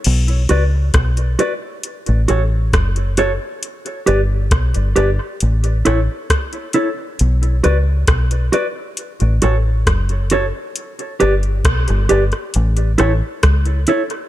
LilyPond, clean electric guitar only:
\new Staff \with { instrumentName = "Clean electric guitar" } { \time 4/4 \key b \minor \tempo 4 = 67 r8 <fis' b' d''>8 r8 <fis' b' d''>8 r8 <fis' a' cis''>8 r8 <fis' a' cis''>8 | r8 <g' b' d''>8 r8 <g' b' d''>8 r8 <e' a' cis''>8 r8 <e' a' cis''>8 | r8 <fis' b' d''>8 r8 <fis' b' d''>8 r8 <fis' a' cis''>8 r8 <fis' a' cis''>8 | r8 <g' b' d''>8 r8 <g' b' d''>8 r8 <e' a' cis''>8 r8 <e' a' cis''>8 | }